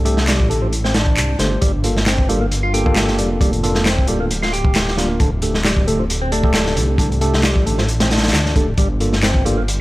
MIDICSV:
0, 0, Header, 1, 5, 480
1, 0, Start_track
1, 0, Key_signature, -2, "minor"
1, 0, Tempo, 447761
1, 1736, Time_signature, 4, 2, 24, 8
1, 10514, End_track
2, 0, Start_track
2, 0, Title_t, "Tine electric piano"
2, 0, Program_c, 0, 4
2, 54, Note_on_c, 0, 57, 94
2, 54, Note_on_c, 0, 67, 87
2, 54, Note_on_c, 0, 69, 100
2, 55, Note_on_c, 0, 62, 86
2, 280, Note_off_c, 0, 57, 0
2, 281, Note_off_c, 0, 62, 0
2, 281, Note_off_c, 0, 67, 0
2, 281, Note_off_c, 0, 69, 0
2, 533, Note_on_c, 0, 62, 71
2, 533, Note_on_c, 0, 69, 87
2, 534, Note_on_c, 0, 57, 74
2, 534, Note_on_c, 0, 67, 70
2, 760, Note_off_c, 0, 57, 0
2, 760, Note_off_c, 0, 62, 0
2, 760, Note_off_c, 0, 67, 0
2, 760, Note_off_c, 0, 69, 0
2, 1493, Note_on_c, 0, 62, 75
2, 1494, Note_on_c, 0, 57, 80
2, 1494, Note_on_c, 0, 72, 90
2, 1495, Note_on_c, 0, 67, 80
2, 1720, Note_off_c, 0, 57, 0
2, 1720, Note_off_c, 0, 62, 0
2, 1721, Note_off_c, 0, 67, 0
2, 1721, Note_off_c, 0, 72, 0
2, 1972, Note_on_c, 0, 62, 73
2, 1973, Note_on_c, 0, 58, 86
2, 1973, Note_on_c, 0, 65, 79
2, 1973, Note_on_c, 0, 69, 88
2, 2121, Note_off_c, 0, 58, 0
2, 2121, Note_off_c, 0, 62, 0
2, 2121, Note_off_c, 0, 65, 0
2, 2121, Note_off_c, 0, 69, 0
2, 2454, Note_on_c, 0, 58, 97
2, 2454, Note_on_c, 0, 62, 86
2, 2454, Note_on_c, 0, 65, 82
2, 2454, Note_on_c, 0, 69, 105
2, 2602, Note_off_c, 0, 58, 0
2, 2602, Note_off_c, 0, 62, 0
2, 2602, Note_off_c, 0, 65, 0
2, 2602, Note_off_c, 0, 69, 0
2, 2934, Note_on_c, 0, 58, 84
2, 2934, Note_on_c, 0, 62, 81
2, 2934, Note_on_c, 0, 65, 77
2, 2934, Note_on_c, 0, 69, 98
2, 3044, Note_off_c, 0, 58, 0
2, 3044, Note_off_c, 0, 62, 0
2, 3044, Note_off_c, 0, 65, 0
2, 3044, Note_off_c, 0, 69, 0
2, 3061, Note_on_c, 0, 58, 89
2, 3061, Note_on_c, 0, 62, 82
2, 3061, Note_on_c, 0, 65, 79
2, 3062, Note_on_c, 0, 69, 97
2, 3867, Note_off_c, 0, 58, 0
2, 3867, Note_off_c, 0, 62, 0
2, 3867, Note_off_c, 0, 65, 0
2, 3868, Note_off_c, 0, 69, 0
2, 3895, Note_on_c, 0, 62, 88
2, 3895, Note_on_c, 0, 65, 88
2, 3896, Note_on_c, 0, 58, 89
2, 3896, Note_on_c, 0, 69, 107
2, 4121, Note_off_c, 0, 58, 0
2, 4121, Note_off_c, 0, 62, 0
2, 4121, Note_off_c, 0, 65, 0
2, 4121, Note_off_c, 0, 69, 0
2, 4374, Note_on_c, 0, 58, 77
2, 4374, Note_on_c, 0, 62, 70
2, 4375, Note_on_c, 0, 65, 69
2, 4375, Note_on_c, 0, 69, 87
2, 4601, Note_off_c, 0, 58, 0
2, 4601, Note_off_c, 0, 62, 0
2, 4601, Note_off_c, 0, 65, 0
2, 4601, Note_off_c, 0, 69, 0
2, 5334, Note_on_c, 0, 58, 85
2, 5334, Note_on_c, 0, 62, 81
2, 5334, Note_on_c, 0, 70, 95
2, 5335, Note_on_c, 0, 65, 82
2, 5560, Note_off_c, 0, 58, 0
2, 5561, Note_off_c, 0, 62, 0
2, 5561, Note_off_c, 0, 65, 0
2, 5561, Note_off_c, 0, 70, 0
2, 5815, Note_on_c, 0, 57, 79
2, 5815, Note_on_c, 0, 62, 76
2, 5815, Note_on_c, 0, 69, 89
2, 5816, Note_on_c, 0, 67, 76
2, 5962, Note_off_c, 0, 62, 0
2, 5963, Note_off_c, 0, 57, 0
2, 5963, Note_off_c, 0, 67, 0
2, 5963, Note_off_c, 0, 69, 0
2, 6296, Note_on_c, 0, 57, 92
2, 6296, Note_on_c, 0, 62, 85
2, 6296, Note_on_c, 0, 67, 89
2, 6297, Note_on_c, 0, 69, 106
2, 6443, Note_off_c, 0, 57, 0
2, 6443, Note_off_c, 0, 62, 0
2, 6443, Note_off_c, 0, 67, 0
2, 6443, Note_off_c, 0, 69, 0
2, 6776, Note_on_c, 0, 62, 80
2, 6776, Note_on_c, 0, 67, 81
2, 6776, Note_on_c, 0, 69, 95
2, 6777, Note_on_c, 0, 57, 87
2, 6885, Note_off_c, 0, 57, 0
2, 6885, Note_off_c, 0, 62, 0
2, 6885, Note_off_c, 0, 67, 0
2, 6885, Note_off_c, 0, 69, 0
2, 6905, Note_on_c, 0, 57, 91
2, 6905, Note_on_c, 0, 62, 83
2, 6905, Note_on_c, 0, 67, 83
2, 6905, Note_on_c, 0, 69, 99
2, 7709, Note_off_c, 0, 57, 0
2, 7709, Note_off_c, 0, 62, 0
2, 7709, Note_off_c, 0, 67, 0
2, 7709, Note_off_c, 0, 69, 0
2, 7732, Note_on_c, 0, 57, 92
2, 7732, Note_on_c, 0, 67, 85
2, 7733, Note_on_c, 0, 62, 82
2, 7733, Note_on_c, 0, 69, 106
2, 7960, Note_off_c, 0, 57, 0
2, 7960, Note_off_c, 0, 62, 0
2, 7960, Note_off_c, 0, 67, 0
2, 7960, Note_off_c, 0, 69, 0
2, 8215, Note_on_c, 0, 57, 81
2, 8215, Note_on_c, 0, 62, 74
2, 8215, Note_on_c, 0, 67, 73
2, 8215, Note_on_c, 0, 69, 85
2, 8441, Note_off_c, 0, 57, 0
2, 8441, Note_off_c, 0, 62, 0
2, 8441, Note_off_c, 0, 67, 0
2, 8441, Note_off_c, 0, 69, 0
2, 9174, Note_on_c, 0, 57, 80
2, 9175, Note_on_c, 0, 69, 88
2, 9176, Note_on_c, 0, 62, 77
2, 9176, Note_on_c, 0, 67, 75
2, 9322, Note_off_c, 0, 57, 0
2, 9322, Note_off_c, 0, 69, 0
2, 9323, Note_off_c, 0, 62, 0
2, 9323, Note_off_c, 0, 67, 0
2, 9653, Note_on_c, 0, 69, 89
2, 9654, Note_on_c, 0, 58, 82
2, 9654, Note_on_c, 0, 62, 73
2, 9654, Note_on_c, 0, 65, 78
2, 9802, Note_off_c, 0, 58, 0
2, 9802, Note_off_c, 0, 62, 0
2, 9802, Note_off_c, 0, 65, 0
2, 9802, Note_off_c, 0, 69, 0
2, 10133, Note_on_c, 0, 58, 93
2, 10134, Note_on_c, 0, 62, 85
2, 10134, Note_on_c, 0, 65, 85
2, 10134, Note_on_c, 0, 69, 99
2, 10282, Note_off_c, 0, 58, 0
2, 10282, Note_off_c, 0, 62, 0
2, 10282, Note_off_c, 0, 65, 0
2, 10282, Note_off_c, 0, 69, 0
2, 10514, End_track
3, 0, Start_track
3, 0, Title_t, "Tonewheel organ"
3, 0, Program_c, 1, 16
3, 295, Note_on_c, 1, 55, 83
3, 524, Note_off_c, 1, 55, 0
3, 534, Note_on_c, 1, 50, 73
3, 657, Note_off_c, 1, 50, 0
3, 664, Note_on_c, 1, 53, 75
3, 722, Note_off_c, 1, 53, 0
3, 904, Note_on_c, 1, 60, 101
3, 1010, Note_off_c, 1, 60, 0
3, 1016, Note_on_c, 1, 62, 74
3, 1485, Note_off_c, 1, 62, 0
3, 1492, Note_on_c, 1, 50, 75
3, 1616, Note_off_c, 1, 50, 0
3, 1731, Note_on_c, 1, 55, 99
3, 1845, Note_off_c, 1, 55, 0
3, 2216, Note_on_c, 1, 60, 83
3, 2445, Note_off_c, 1, 60, 0
3, 2456, Note_on_c, 1, 55, 71
3, 2578, Note_off_c, 1, 55, 0
3, 2582, Note_on_c, 1, 58, 72
3, 2641, Note_off_c, 1, 58, 0
3, 2820, Note_on_c, 1, 65, 101
3, 2928, Note_off_c, 1, 65, 0
3, 2935, Note_on_c, 1, 67, 70
3, 3404, Note_off_c, 1, 67, 0
3, 3416, Note_on_c, 1, 55, 77
3, 3537, Note_off_c, 1, 55, 0
3, 3654, Note_on_c, 1, 55, 101
3, 3766, Note_off_c, 1, 55, 0
3, 4136, Note_on_c, 1, 60, 82
3, 4365, Note_off_c, 1, 60, 0
3, 4377, Note_on_c, 1, 55, 75
3, 4498, Note_off_c, 1, 55, 0
3, 4505, Note_on_c, 1, 58, 75
3, 4563, Note_off_c, 1, 58, 0
3, 4744, Note_on_c, 1, 65, 102
3, 4850, Note_off_c, 1, 65, 0
3, 4854, Note_on_c, 1, 67, 75
3, 5323, Note_off_c, 1, 67, 0
3, 5335, Note_on_c, 1, 55, 74
3, 5457, Note_off_c, 1, 55, 0
3, 5575, Note_on_c, 1, 50, 100
3, 5687, Note_off_c, 1, 50, 0
3, 6059, Note_on_c, 1, 55, 84
3, 6286, Note_off_c, 1, 55, 0
3, 6298, Note_on_c, 1, 50, 74
3, 6418, Note_off_c, 1, 50, 0
3, 6424, Note_on_c, 1, 53, 76
3, 6482, Note_off_c, 1, 53, 0
3, 6662, Note_on_c, 1, 60, 103
3, 6769, Note_off_c, 1, 60, 0
3, 6776, Note_on_c, 1, 62, 76
3, 7245, Note_off_c, 1, 62, 0
3, 7255, Note_on_c, 1, 50, 78
3, 7377, Note_off_c, 1, 50, 0
3, 7493, Note_on_c, 1, 50, 98
3, 7606, Note_off_c, 1, 50, 0
3, 7975, Note_on_c, 1, 55, 82
3, 8204, Note_off_c, 1, 55, 0
3, 8213, Note_on_c, 1, 50, 75
3, 8336, Note_off_c, 1, 50, 0
3, 8345, Note_on_c, 1, 53, 76
3, 8403, Note_off_c, 1, 53, 0
3, 8584, Note_on_c, 1, 60, 100
3, 8690, Note_off_c, 1, 60, 0
3, 8697, Note_on_c, 1, 62, 73
3, 9165, Note_off_c, 1, 62, 0
3, 9175, Note_on_c, 1, 50, 79
3, 9297, Note_off_c, 1, 50, 0
3, 9414, Note_on_c, 1, 55, 99
3, 9526, Note_off_c, 1, 55, 0
3, 9894, Note_on_c, 1, 60, 82
3, 10123, Note_off_c, 1, 60, 0
3, 10134, Note_on_c, 1, 55, 74
3, 10257, Note_off_c, 1, 55, 0
3, 10263, Note_on_c, 1, 58, 74
3, 10322, Note_off_c, 1, 58, 0
3, 10514, End_track
4, 0, Start_track
4, 0, Title_t, "Detuned saw bass"
4, 0, Program_c, 2, 39
4, 0, Note_on_c, 2, 36, 94
4, 427, Note_on_c, 2, 33, 75
4, 443, Note_off_c, 2, 36, 0
4, 1256, Note_on_c, 2, 36, 83
4, 1272, Note_off_c, 2, 33, 0
4, 1451, Note_off_c, 2, 36, 0
4, 1494, Note_on_c, 2, 31, 98
4, 1690, Note_off_c, 2, 31, 0
4, 1738, Note_on_c, 2, 31, 97
4, 3415, Note_on_c, 2, 29, 96
4, 3431, Note_off_c, 2, 31, 0
4, 4272, Note_on_c, 2, 26, 78
4, 4288, Note_off_c, 2, 29, 0
4, 5544, Note_off_c, 2, 26, 0
4, 5576, Note_on_c, 2, 26, 98
4, 7257, Note_on_c, 2, 36, 97
4, 7273, Note_off_c, 2, 26, 0
4, 8102, Note_on_c, 2, 33, 78
4, 8118, Note_off_c, 2, 36, 0
4, 8930, Note_off_c, 2, 33, 0
4, 8936, Note_on_c, 2, 38, 88
4, 9176, Note_on_c, 2, 26, 94
4, 9192, Note_off_c, 2, 38, 0
4, 9371, Note_off_c, 2, 26, 0
4, 9410, Note_on_c, 2, 31, 102
4, 10514, Note_off_c, 2, 31, 0
4, 10514, End_track
5, 0, Start_track
5, 0, Title_t, "Drums"
5, 59, Note_on_c, 9, 42, 62
5, 166, Note_off_c, 9, 42, 0
5, 184, Note_on_c, 9, 38, 52
5, 291, Note_off_c, 9, 38, 0
5, 291, Note_on_c, 9, 42, 85
5, 295, Note_on_c, 9, 39, 106
5, 307, Note_on_c, 9, 38, 118
5, 398, Note_off_c, 9, 42, 0
5, 402, Note_off_c, 9, 39, 0
5, 414, Note_off_c, 9, 38, 0
5, 425, Note_on_c, 9, 36, 90
5, 532, Note_off_c, 9, 36, 0
5, 543, Note_on_c, 9, 42, 64
5, 650, Note_off_c, 9, 42, 0
5, 777, Note_on_c, 9, 42, 63
5, 884, Note_off_c, 9, 42, 0
5, 906, Note_on_c, 9, 38, 45
5, 1010, Note_on_c, 9, 42, 80
5, 1013, Note_off_c, 9, 38, 0
5, 1013, Note_on_c, 9, 38, 98
5, 1117, Note_off_c, 9, 42, 0
5, 1120, Note_off_c, 9, 38, 0
5, 1143, Note_on_c, 9, 36, 79
5, 1250, Note_off_c, 9, 36, 0
5, 1254, Note_on_c, 9, 39, 108
5, 1261, Note_on_c, 9, 42, 66
5, 1361, Note_off_c, 9, 39, 0
5, 1368, Note_off_c, 9, 42, 0
5, 1489, Note_on_c, 9, 38, 47
5, 1494, Note_on_c, 9, 42, 63
5, 1596, Note_off_c, 9, 38, 0
5, 1601, Note_off_c, 9, 42, 0
5, 1733, Note_on_c, 9, 42, 84
5, 1738, Note_on_c, 9, 36, 110
5, 1840, Note_off_c, 9, 42, 0
5, 1845, Note_off_c, 9, 36, 0
5, 1970, Note_on_c, 9, 42, 73
5, 2077, Note_off_c, 9, 42, 0
5, 2107, Note_on_c, 9, 38, 49
5, 2212, Note_off_c, 9, 38, 0
5, 2212, Note_on_c, 9, 38, 120
5, 2213, Note_on_c, 9, 42, 86
5, 2214, Note_on_c, 9, 39, 100
5, 2319, Note_off_c, 9, 38, 0
5, 2320, Note_off_c, 9, 42, 0
5, 2321, Note_off_c, 9, 39, 0
5, 2341, Note_on_c, 9, 36, 91
5, 2448, Note_off_c, 9, 36, 0
5, 2458, Note_on_c, 9, 42, 67
5, 2565, Note_off_c, 9, 42, 0
5, 2695, Note_on_c, 9, 42, 80
5, 2802, Note_off_c, 9, 42, 0
5, 2937, Note_on_c, 9, 42, 72
5, 3044, Note_off_c, 9, 42, 0
5, 3068, Note_on_c, 9, 36, 82
5, 3172, Note_on_c, 9, 39, 107
5, 3175, Note_off_c, 9, 36, 0
5, 3176, Note_on_c, 9, 42, 81
5, 3178, Note_on_c, 9, 38, 101
5, 3280, Note_off_c, 9, 39, 0
5, 3283, Note_off_c, 9, 42, 0
5, 3285, Note_off_c, 9, 38, 0
5, 3299, Note_on_c, 9, 38, 49
5, 3406, Note_off_c, 9, 38, 0
5, 3415, Note_on_c, 9, 42, 66
5, 3522, Note_off_c, 9, 42, 0
5, 3653, Note_on_c, 9, 36, 110
5, 3657, Note_on_c, 9, 42, 81
5, 3760, Note_off_c, 9, 36, 0
5, 3764, Note_off_c, 9, 42, 0
5, 3783, Note_on_c, 9, 42, 43
5, 3890, Note_off_c, 9, 42, 0
5, 3898, Note_on_c, 9, 42, 73
5, 4005, Note_off_c, 9, 42, 0
5, 4018, Note_on_c, 9, 38, 47
5, 4125, Note_off_c, 9, 38, 0
5, 4134, Note_on_c, 9, 39, 98
5, 4135, Note_on_c, 9, 38, 110
5, 4137, Note_on_c, 9, 42, 77
5, 4242, Note_off_c, 9, 38, 0
5, 4242, Note_off_c, 9, 39, 0
5, 4244, Note_off_c, 9, 42, 0
5, 4271, Note_on_c, 9, 36, 86
5, 4366, Note_on_c, 9, 42, 61
5, 4379, Note_off_c, 9, 36, 0
5, 4474, Note_off_c, 9, 42, 0
5, 4616, Note_on_c, 9, 42, 91
5, 4723, Note_off_c, 9, 42, 0
5, 4744, Note_on_c, 9, 38, 38
5, 4851, Note_off_c, 9, 38, 0
5, 4861, Note_on_c, 9, 42, 70
5, 4968, Note_off_c, 9, 42, 0
5, 4980, Note_on_c, 9, 36, 92
5, 5088, Note_off_c, 9, 36, 0
5, 5091, Note_on_c, 9, 42, 79
5, 5095, Note_on_c, 9, 39, 101
5, 5102, Note_on_c, 9, 38, 118
5, 5198, Note_off_c, 9, 42, 0
5, 5202, Note_off_c, 9, 39, 0
5, 5210, Note_off_c, 9, 38, 0
5, 5230, Note_on_c, 9, 38, 51
5, 5332, Note_off_c, 9, 38, 0
5, 5332, Note_on_c, 9, 38, 44
5, 5343, Note_on_c, 9, 42, 68
5, 5439, Note_off_c, 9, 38, 0
5, 5450, Note_off_c, 9, 42, 0
5, 5573, Note_on_c, 9, 42, 79
5, 5575, Note_on_c, 9, 36, 101
5, 5680, Note_off_c, 9, 42, 0
5, 5682, Note_off_c, 9, 36, 0
5, 5809, Note_on_c, 9, 42, 67
5, 5916, Note_off_c, 9, 42, 0
5, 5943, Note_on_c, 9, 38, 47
5, 6050, Note_off_c, 9, 38, 0
5, 6052, Note_on_c, 9, 38, 109
5, 6054, Note_on_c, 9, 39, 103
5, 6060, Note_on_c, 9, 42, 86
5, 6159, Note_off_c, 9, 38, 0
5, 6162, Note_off_c, 9, 39, 0
5, 6168, Note_off_c, 9, 42, 0
5, 6180, Note_on_c, 9, 36, 98
5, 6287, Note_off_c, 9, 36, 0
5, 6299, Note_on_c, 9, 42, 64
5, 6407, Note_off_c, 9, 42, 0
5, 6537, Note_on_c, 9, 42, 93
5, 6644, Note_off_c, 9, 42, 0
5, 6774, Note_on_c, 9, 42, 71
5, 6881, Note_off_c, 9, 42, 0
5, 6899, Note_on_c, 9, 36, 92
5, 7006, Note_off_c, 9, 36, 0
5, 7010, Note_on_c, 9, 38, 124
5, 7012, Note_on_c, 9, 39, 101
5, 7017, Note_on_c, 9, 42, 81
5, 7117, Note_off_c, 9, 38, 0
5, 7120, Note_off_c, 9, 39, 0
5, 7124, Note_off_c, 9, 42, 0
5, 7141, Note_on_c, 9, 38, 50
5, 7249, Note_off_c, 9, 38, 0
5, 7255, Note_on_c, 9, 42, 75
5, 7362, Note_off_c, 9, 42, 0
5, 7486, Note_on_c, 9, 36, 110
5, 7495, Note_on_c, 9, 42, 79
5, 7593, Note_off_c, 9, 36, 0
5, 7602, Note_off_c, 9, 42, 0
5, 7631, Note_on_c, 9, 42, 41
5, 7731, Note_off_c, 9, 42, 0
5, 7731, Note_on_c, 9, 42, 74
5, 7839, Note_off_c, 9, 42, 0
5, 7865, Note_on_c, 9, 38, 54
5, 7968, Note_on_c, 9, 42, 76
5, 7969, Note_off_c, 9, 38, 0
5, 7969, Note_on_c, 9, 38, 120
5, 7973, Note_on_c, 9, 39, 96
5, 8075, Note_off_c, 9, 42, 0
5, 8076, Note_off_c, 9, 38, 0
5, 8080, Note_off_c, 9, 39, 0
5, 8101, Note_on_c, 9, 36, 91
5, 8208, Note_off_c, 9, 36, 0
5, 8218, Note_on_c, 9, 42, 63
5, 8325, Note_off_c, 9, 42, 0
5, 8341, Note_on_c, 9, 38, 43
5, 8448, Note_off_c, 9, 38, 0
5, 8451, Note_on_c, 9, 42, 58
5, 8558, Note_off_c, 9, 42, 0
5, 8579, Note_on_c, 9, 38, 100
5, 8579, Note_on_c, 9, 42, 76
5, 8686, Note_off_c, 9, 38, 0
5, 8686, Note_off_c, 9, 42, 0
5, 8693, Note_on_c, 9, 42, 60
5, 8695, Note_on_c, 9, 38, 89
5, 8762, Note_off_c, 9, 42, 0
5, 8762, Note_on_c, 9, 42, 64
5, 8766, Note_off_c, 9, 38, 0
5, 8766, Note_on_c, 9, 38, 82
5, 8821, Note_off_c, 9, 38, 0
5, 8821, Note_on_c, 9, 38, 82
5, 8827, Note_off_c, 9, 42, 0
5, 8827, Note_on_c, 9, 42, 61
5, 8875, Note_off_c, 9, 38, 0
5, 8875, Note_on_c, 9, 38, 86
5, 8877, Note_off_c, 9, 42, 0
5, 8877, Note_on_c, 9, 42, 68
5, 8933, Note_on_c, 9, 39, 101
5, 8935, Note_off_c, 9, 38, 0
5, 8935, Note_on_c, 9, 38, 115
5, 8941, Note_off_c, 9, 42, 0
5, 8941, Note_on_c, 9, 42, 86
5, 9041, Note_off_c, 9, 39, 0
5, 9042, Note_off_c, 9, 38, 0
5, 9048, Note_off_c, 9, 42, 0
5, 9065, Note_on_c, 9, 38, 47
5, 9172, Note_off_c, 9, 38, 0
5, 9175, Note_on_c, 9, 36, 100
5, 9175, Note_on_c, 9, 42, 82
5, 9282, Note_off_c, 9, 36, 0
5, 9282, Note_off_c, 9, 42, 0
5, 9408, Note_on_c, 9, 42, 77
5, 9409, Note_on_c, 9, 36, 107
5, 9515, Note_off_c, 9, 42, 0
5, 9517, Note_off_c, 9, 36, 0
5, 9653, Note_on_c, 9, 42, 73
5, 9760, Note_off_c, 9, 42, 0
5, 9785, Note_on_c, 9, 38, 45
5, 9892, Note_off_c, 9, 38, 0
5, 9893, Note_on_c, 9, 39, 106
5, 9894, Note_on_c, 9, 38, 124
5, 9896, Note_on_c, 9, 42, 74
5, 10000, Note_off_c, 9, 39, 0
5, 10001, Note_off_c, 9, 38, 0
5, 10003, Note_off_c, 9, 42, 0
5, 10015, Note_on_c, 9, 36, 88
5, 10122, Note_off_c, 9, 36, 0
5, 10139, Note_on_c, 9, 42, 66
5, 10246, Note_off_c, 9, 42, 0
5, 10379, Note_on_c, 9, 42, 87
5, 10486, Note_off_c, 9, 42, 0
5, 10514, End_track
0, 0, End_of_file